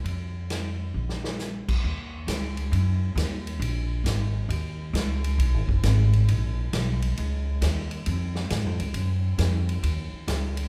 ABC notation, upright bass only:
X:1
M:4/4
L:1/8
Q:"Swing" 1/4=135
K:Ebm
V:1 name="Upright bass" clef=bass
F,,4 B,,,3 z | E,,2 D,,2 G,,2 E,,2 | B,,,2 A,,,2 E,,2 D,,2 | (3C,, A,,, G,,, A,,,2 B,,,2 C,,2 |
D,,2 E,,2 F,,2 (3A,, F,, D,, | G,,2 F,,2 E,, z D,,2 |]